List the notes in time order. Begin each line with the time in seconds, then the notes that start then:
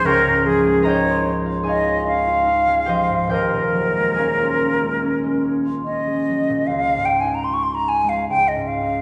Already playing: F3 G#3 D#4 F4 G#4 D#5 F5 G#5 D#6
0.04 C#2 A#4 C#5 G5 C#6
0.09 A#5
0.26 G#2
0.45 F3 G#4
0.65 G#3
0.82 D#4 A#4 C#5 D#5 A#5
0.87 G5
1.05 F4
1.25 D#4
1.45 F4
1.63 D#4 G#4 C#5 D#5 G#5
1.68 F5
1.87 F4
2.07 D#4 F5
2.27 F4
2.47 D#4
2.67 G#3
2.85 F3 G4 C5 D#5 G5
3.09 G#2
3.27 D#1 D#2 G4 G5
3.31 A#4 C5 D#5
3.53 A#2
3.74 F#3
3.96 G#3
4.14 C#4 G#4 C#5 G#5
4.19 F5
4.39 F4
4.60 C#4
4.81 G#3
5.02 C#4
5.23 G#3
5.44 C#4
5.65 F4
5.85 C#4 D#5
6.07 G#3
6.28 F#3
6.49 A#2
6.67 C#2 F5
6.96 G#2
7.05 G5
7.20 D#4 G#5
7.35 A#5
7.44 C6
7.50 F4 C#6
7.63 C6
7.75 D#4 A#5
7.88 G#5
8.04 G#3
8.09 F5
8.29 C#2 G5
8.48 D#5
8.55 G#2
8.67 F5
8.82 D#4